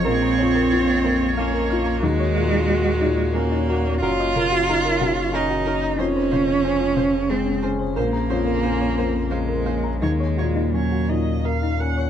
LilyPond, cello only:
\new Staff \with { instrumentName = "Cello" } { \time 3/4 \key bes \minor \tempo 4 = 90 c'2 bes4 | aes2 bes4 | f'2 ees'4 | des'2 c'8 r8 |
bes2 aes4 | aes4 ges4 r4 | }